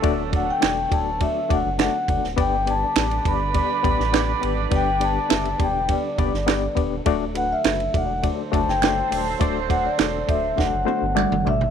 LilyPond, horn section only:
\new Staff \with { instrumentName = "Horn section" } { \time 4/4 \key g \major \tempo 4 = 102 <fis a d' a'>2.~ <fis a d' a'>8 r8 | <d' g' b' d''>1~ | <d' g' b' d''>2.~ <d' g' b' d''>8 r8 | r2 <fis c' a' c''>2~ |
<fis c' a' c''>2.~ <fis c' a' c''>8 r8 | }